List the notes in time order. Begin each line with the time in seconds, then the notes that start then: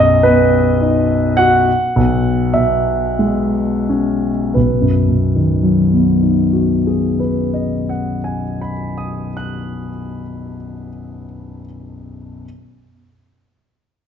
Already playing: B1 F#2
0.00 D#5
0.23 B3 B4
0.81 D#4
1.37 F#4 F#5
1.96 B1
2.54 B2 E5
3.19 G#3
3.89 C#4
4.54 B1 B4
4.81 F#2
5.08 B2
5.36 D#3
5.63 F#3
5.93 B3
6.23 D#4
6.53 F#4
6.87 G#4
7.20 B4
7.54 D#5
7.89 F#5
8.24 G#5
8.61 B5
8.98 D#6
9.37 F#6